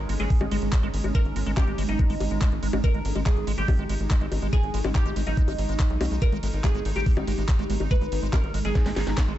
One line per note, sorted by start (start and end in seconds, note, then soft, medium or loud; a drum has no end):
0.00 9.38 G#3 loud
0.00 9.38 G#3 medium
0.00 2.86 C#4 medium
0.00 9.38 D#4 medium
0.00 9.38 A#5 medium
0.00 3.44 D#6 medium
0.09 0.17 G#1 loud
0.09 0.14 G#3 medium
0.09 open hi-hat loud
0.09 ride medium
0.20 0.27 G#1 medium
0.20 0.25 G#3 loud
0.20 1.06 G#4 medium
0.20 closed hi-hat medium
0.30 kick loud
0.30 open hi-hat medium
0.30 ride medium
0.41 0.48 G#1 medium
0.41 0.46 G#3 medium
0.41 closed hi-hat soft
0.41 high bongo medium
0.51 0.59 G#1 loud
0.51 0.57 G#3 loud
0.51 open hi-hat loud
0.51 ride medium
0.62 0.70 G#1 medium
0.62 closed hi-hat soft
0.73 0.78 G#3 medium
0.73 kick loud
0.73 clap loud
0.73 closed hi-hat soft
0.73 ride medium
0.83 0.91 G#1 medium
0.83 0.88 G#3 loud
0.83 closed hi-hat soft
0.94 1.01 G#1 loud
0.94 open hi-hat loud
0.94 ride medium
1.04 1.12 G#1 loud
1.04 1.09 G#3 medium
1.04 closed hi-hat soft
1.04 high bongo soft
1.15 1.20 G#3 loud
1.15 1.40 A#4 loud
1.15 kick loud
1.15 closed hi-hat medium
1.15 ride medium
1.25 1.33 G#1 medium
1.25 closed hi-hat soft
1.36 1.44 G#1 loud
1.36 1.41 G#3 medium
1.36 open hi-hat loud
1.36 ride medium
1.46 1.54 G#1 loud
1.46 1.52 G#3 loud
1.57 1.76 G4 loud
1.57 kick loud
1.57 clap loud
1.57 closed hi-hat medium
1.57 ride medium
1.57 high bongo medium
1.68 1.75 G#1 medium
1.68 1.73 G#3 medium
1.68 closed hi-hat soft
1.78 1.86 G#1 loud
1.78 1.83 G#3 loud
1.78 open hi-hat loud
1.78 ride medium
1.89 1.96 G#1 medium
1.89 2.75 D#4 medium
1.89 closed hi-hat medium
1.99 2.04 G#3 medium
1.99 kick loud
1.99 closed hi-hat soft
1.99 ride medium
2.10 2.17 G#1 medium
2.10 2.15 G#3 medium
2.10 open hi-hat medium
2.20 2.28 G#1 loud
2.20 open hi-hat loud
2.20 ride medium
2.20 high bongo soft
2.31 2.39 G#1 medium
2.31 2.39 G#3 medium
2.31 closed hi-hat medium
2.42 2.49 G#3 loud
2.42 kick loud
2.42 clap loud
2.42 closed hi-hat medium
2.52 2.60 G#1 medium
2.52 closed hi-hat soft
2.63 2.70 G#1 loud
2.63 2.68 G#3 medium
2.63 open hi-hat loud
2.63 ride medium
2.73 2.81 G#1 medium
2.73 2.78 G#3 medium
2.73 high bongo medium
2.84 2.89 G#3 loud
2.84 6.21 D#4 medium
2.84 3.09 A#4 loud
2.84 kick loud
2.84 closed hi-hat medium
2.84 ride medium
2.94 3.02 G#1 medium
2.94 3.00 G#3 medium
2.94 closed hi-hat soft
3.05 3.13 G#1 loud
3.05 open hi-hat loud
3.05 ride medium
3.15 3.23 G#1 loud
3.15 3.21 G#3 loud
3.15 closed hi-hat medium
3.15 high bongo soft
3.26 3.31 G#3 medium
3.26 3.45 G#4 loud
3.26 kick loud
3.26 clap loud
3.26 closed hi-hat soft
3.26 ride medium
3.37 3.44 G#1 medium
3.37 closed hi-hat soft
3.42 9.38 C#6 medium
3.47 3.55 G#1 loud
3.47 3.52 G#3 loud
3.47 open hi-hat loud
3.47 ride medium
3.58 3.65 G#1 medium
3.58 3.63 G#3 medium
3.58 4.44 G4 medium
3.58 closed hi-hat medium
3.68 kick loud
3.68 open hi-hat medium
3.68 ride medium
3.68 high bongo medium
3.79 3.86 G#1 medium
3.79 3.84 G#3 loud
3.79 closed hi-hat soft
3.89 3.97 G#1 loud
3.89 3.95 G#3 medium
3.89 open hi-hat loud
3.89 ride medium
4.00 4.08 G#1 medium
4.00 closed hi-hat medium
4.11 4.16 G#3 loud
4.11 kick loud
4.11 clap loud
4.11 closed hi-hat medium
4.21 4.29 G#1 medium
4.21 4.26 G#3 medium
4.21 closed hi-hat soft
4.32 4.39 G#1 loud
4.32 open hi-hat loud
4.32 ride medium
4.32 high bongo soft
4.42 4.50 G#1 medium
4.42 4.47 G#3 loud
4.42 closed hi-hat soft
4.53 4.58 G#3 medium
4.53 4.78 G#4 loud
4.53 kick loud
4.53 closed hi-hat medium
4.53 ride medium
4.63 4.71 G#1 medium
4.63 closed hi-hat soft
4.74 4.82 G#1 loud
4.74 4.79 G#3 loud
4.74 open hi-hat loud
4.74 ride medium
4.85 4.92 G#1 medium
4.85 4.90 G#3 medium
4.85 closed hi-hat medium
4.85 high bongo medium
4.95 5.14 G4 loud
4.95 kick loud
4.95 clap loud
4.95 closed hi-hat medium
4.95 ride medium
5.06 5.13 G#1 medium
5.06 5.11 G#3 loud
5.06 closed hi-hat soft
5.16 5.24 G#1 loud
5.16 5.21 G#3 medium
5.16 open hi-hat loud
5.16 ride medium
5.27 5.34 G#1 medium
5.27 6.13 D#4 loud
5.27 closed hi-hat medium
5.37 5.43 G#3 loud
5.37 kick loud
5.37 closed hi-hat medium
5.37 ride medium
5.48 5.56 G#1 medium
5.48 5.53 G#3 medium
5.48 open hi-hat medium
5.48 high bongo soft
5.58 5.66 G#1 loud
5.58 open hi-hat loud
5.58 ride medium
5.69 5.77 G#1 medium
5.69 5.74 G#3 loud
5.69 closed hi-hat medium
5.80 5.85 G#3 medium
5.80 kick loud
5.80 clap loud
5.80 closed hi-hat medium
5.80 ride medium
5.90 5.98 B1 medium
5.90 closed hi-hat soft
6.01 6.08 B1 loud
6.01 6.06 G#3 loud
6.01 open hi-hat loud
6.01 ride medium
6.01 high bongo medium
6.11 6.19 B1 medium
6.11 6.16 G#3 medium
6.11 closed hi-hat medium
6.22 9.38 D#4 medium
6.22 6.47 A#4 loud
6.22 kick loud
6.22 closed hi-hat medium
6.22 ride medium
6.32 6.40 G#1 medium
6.32 6.38 G#3 loud
6.32 closed hi-hat soft
6.43 6.51 G#1 loud
6.43 6.48 G#3 medium
6.43 open hi-hat loud
6.43 ride medium
6.53 6.61 G#1 medium
6.53 closed hi-hat medium
6.64 6.69 G#3 loud
6.64 6.83 G#4 loud
6.64 kick loud
6.64 clap loud
6.64 closed hi-hat medium
6.64 high bongo soft
6.75 6.82 G#1 medium
6.75 6.80 G#3 medium
6.75 closed hi-hat soft
6.85 6.93 G#1 loud
6.85 open hi-hat loud
6.85 ride medium
6.96 7.03 G#1 loud
6.96 7.01 G#3 loud
6.96 7.82 G4 medium
6.96 closed hi-hat medium
7.06 7.12 G#3 medium
7.06 kick loud
7.06 open hi-hat medium
7.06 ride medium
7.17 7.25 G#1 medium
7.17 closed hi-hat soft
7.17 high bongo medium
7.27 7.35 G#1 loud
7.27 7.33 G#3 loud
7.27 open hi-hat loud
7.27 ride medium
7.38 7.46 G#1 medium
7.38 7.43 G#3 medium
7.38 closed hi-hat medium
7.49 kick loud
7.49 clap loud
7.49 closed hi-hat medium
7.49 ride medium
7.59 7.67 G#1 medium
7.59 7.64 G#3 loud
7.59 closed hi-hat soft
7.70 7.77 G#1 loud
7.70 7.75 G#3 medium
7.70 open hi-hat loud
7.70 ride medium
7.80 7.88 G#1 loud
7.80 closed hi-hat medium
7.80 high bongo soft
7.91 7.96 G#3 loud
7.91 8.16 B4 loud
7.91 kick loud
7.91 closed hi-hat medium
7.91 ride medium
8.01 8.09 G#1 medium
8.01 8.07 G#3 medium
8.01 closed hi-hat soft
8.12 8.20 G#1 loud
8.12 open hi-hat loud
8.12 ride medium
8.22 8.30 G#1 medium
8.22 8.28 G#3 loud
8.22 closed hi-hat medium
8.33 8.38 G#3 medium
8.33 8.52 A#4 loud
8.33 kick loud
8.33 clap loud
8.33 closed hi-hat medium
8.33 ride medium
8.33 high bongo medium
8.44 8.51 G#1 medium
8.44 closed hi-hat soft
8.54 8.62 G#1 loud
8.54 8.59 G#3 loud
8.54 open hi-hat loud
8.54 ride medium
8.65 8.72 G#1 loud
8.65 8.70 G#3 medium
8.65 9.38 G#4 medium
8.65 closed hi-hat medium
8.75 kick loud
8.75 snare medium
8.75 closed hi-hat medium
8.75 ride medium
8.86 8.94 G#1 medium
8.86 8.91 G#3 loud
8.86 snare medium
8.86 open hi-hat medium
8.96 9.04 G#1 loud
8.96 9.19 D#4 medium
8.96 snare medium
8.96 open hi-hat loud
8.96 ride medium
8.96 high bongo soft
9.07 9.15 G#1 loud
9.07 snare medium
9.07 closed hi-hat medium
9.18 9.23 G3 medium
9.18 kick loud
9.18 snare medium
9.18 clap loud
9.18 closed hi-hat medium
9.18 ride medium
9.28 9.36 G#1 medium
9.28 9.33 G#3 loud
9.28 closed hi-hat soft